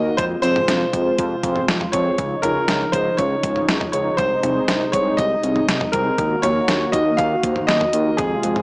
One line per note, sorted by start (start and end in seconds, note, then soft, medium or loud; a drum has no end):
0.00 0.11 D#2 loud
0.00 0.16 D#3 medium
0.00 0.16 A#3 medium
0.00 0.16 D#4 medium
0.00 0.16 F#4 medium
0.00 0.16 A#4 medium
0.00 0.19 D#5 loud
0.17 0.36 F2 loud
0.17 2.16 C3 medium
0.17 2.16 G#3 medium
0.17 2.16 F4 medium
0.17 0.23 C5 loud
0.17 kick loud
0.17 closed hi-hat medium
0.42 0.61 F2 loud
0.42 0.66 C4 medium
0.42 0.66 F4 medium
0.42 0.66 G#4 medium
0.42 1.89 C5 loud
0.42 0.66 C5 medium
0.42 closed hi-hat medium
0.56 mid tom medium
0.68 0.86 F2 loud
0.68 snare loud
0.68 closed hi-hat medium
0.93 1.11 F2 medium
0.93 1.16 C4 medium
0.93 1.16 F4 medium
0.93 1.16 G#4 medium
0.93 1.16 C5 medium
0.93 kick medium
0.93 closed hi-hat medium
1.18 1.36 F2 loud
1.18 kick medium
1.18 closed hi-hat medium
1.43 1.61 F2 loud
1.43 1.66 C4 medium
1.43 1.66 F4 medium
1.43 1.66 G#4 medium
1.43 1.66 C5 medium
1.43 kick medium
1.43 closed hi-hat medium
1.56 mid tom medium
1.68 1.86 F2 loud
1.68 snare loud
1.68 closed hi-hat medium
1.81 mid tom medium
1.92 2.11 F2 loud
1.92 2.16 C4 medium
1.92 2.16 F4 medium
1.92 2.16 G#4 medium
1.92 2.16 C5 medium
1.92 2.44 C#5 loud
1.92 kick loud
1.92 closed hi-hat medium
2.18 2.36 C#2 loud
2.18 4.16 C#3 medium
2.18 4.16 F3 medium
2.18 6.15 D#4 medium
2.18 kick loud
2.18 closed hi-hat medium
2.42 2.61 C#2 loud
2.42 2.66 D#4 medium
2.42 2.66 F4 medium
2.42 2.66 G#4 medium
2.42 2.94 A#4 medium
2.42 2.66 C#5 medium
2.42 closed hi-hat medium
2.42 mid tom medium
2.68 2.86 C#2 loud
2.68 snare loud
2.68 closed hi-hat medium
2.92 3.11 C#2 loud
2.92 3.16 D#4 medium
2.92 3.16 F4 medium
2.92 3.16 G#4 medium
2.92 3.16 C5 medium
2.92 3.16 D#5 medium
2.92 kick medium
2.92 closed hi-hat medium
3.17 3.36 C#2 loud
3.17 3.89 C#5 medium
3.17 kick loud
3.17 closed hi-hat medium
3.43 3.61 C#2 loud
3.43 3.66 D#4 medium
3.43 3.66 F4 medium
3.43 3.66 G#4 medium
3.43 3.66 C#5 medium
3.43 kick medium
3.43 closed hi-hat medium
3.56 mid tom medium
3.68 3.86 C#2 loud
3.68 snare loud
3.68 closed hi-hat medium
3.81 mid tom medium
3.92 4.11 C#2 loud
3.92 4.16 D#4 medium
3.92 4.16 F4 medium
3.92 4.16 G#4 medium
3.92 4.16 C#5 medium
3.92 closed hi-hat medium
4.17 4.36 C2 loud
4.17 6.16 C3 medium
4.17 6.16 G#3 medium
4.17 4.89 C5 loud
4.17 kick loud
4.17 closed hi-hat medium
4.43 4.61 C2 loud
4.43 4.66 C4 medium
4.43 4.66 D#4 medium
4.43 4.66 G#4 medium
4.43 4.66 C5 medium
4.43 closed hi-hat medium
4.43 mid tom medium
4.68 4.86 C2 loud
4.68 snare loud
4.68 closed hi-hat medium
4.92 5.11 C2 loud
4.92 5.16 C4 medium
4.92 5.16 D#4 medium
4.92 5.16 G#4 medium
4.92 5.16 C5 medium
4.92 5.19 C#5 medium
4.92 kick medium
4.92 closed hi-hat medium
5.17 5.36 C2 loud
5.17 5.89 D#5 loud
5.17 kick loud
5.17 closed hi-hat medium
5.43 5.61 C2 loud
5.43 5.66 C4 medium
5.43 5.66 D#4 medium
5.43 5.66 G#4 medium
5.43 5.66 D#5 medium
5.43 closed hi-hat medium
5.56 mid tom medium
5.68 5.86 C2 loud
5.68 snare loud
5.68 closed hi-hat medium
5.81 mid tom loud
5.92 6.11 C2 loud
5.92 6.16 C4 medium
5.92 6.16 D#4 medium
5.92 6.16 G#4 medium
5.92 6.44 A#4 medium
5.92 6.16 C5 medium
5.92 kick loud
5.92 closed hi-hat medium
6.18 6.36 D#2 loud
6.18 8.17 D#3 medium
6.18 8.16 A#3 medium
6.18 8.17 F#4 medium
6.18 kick loud
6.18 closed hi-hat medium
6.42 6.61 D#2 loud
6.42 6.66 A#3 medium
6.42 6.66 D#4 medium
6.42 6.66 F#4 medium
6.42 6.66 A#4 medium
6.42 6.94 C#5 loud
6.42 closed hi-hat medium
6.42 mid tom medium
6.68 6.86 D#2 loud
6.68 snare loud
6.68 closed hi-hat medium
6.92 7.11 D#2 loud
6.92 7.16 A#3 medium
6.92 7.16 D#4 medium
6.92 7.16 F#4 medium
6.92 7.16 A#4 medium
6.92 7.19 D#5 medium
6.92 kick medium
6.92 closed hi-hat medium
7.17 7.36 D#2 loud
7.17 7.69 F5 loud
7.17 kick loud
7.17 closed hi-hat medium
7.43 7.61 D#2 loud
7.43 7.66 A#3 medium
7.43 7.66 D#4 medium
7.43 7.66 F#4 medium
7.43 7.66 C5 medium
7.43 kick loud
7.43 closed hi-hat medium
7.56 mid tom medium
7.67 7.86 D#2 loud
7.67 8.19 D#5 medium
7.67 snare loud
7.67 closed hi-hat medium
7.81 mid tom medium
7.93 8.11 D#2 loud
7.93 8.16 A#3 medium
7.93 8.16 D#4 medium
7.93 8.16 F#4 medium
7.93 8.16 A#4 medium
7.93 closed hi-hat medium
8.17 8.36 F2 loud
8.17 8.62 C3 medium
8.17 8.62 G#3 medium
8.17 8.62 F4 medium
8.17 8.62 G#4 medium
8.17 kick loud
8.17 closed hi-hat medium
8.43 8.61 F2 loud
8.43 8.62 G#3 medium
8.43 8.62 C4 medium
8.43 8.62 F4 medium
8.43 8.62 G#4 medium
8.43 closed hi-hat medium
8.56 mid tom medium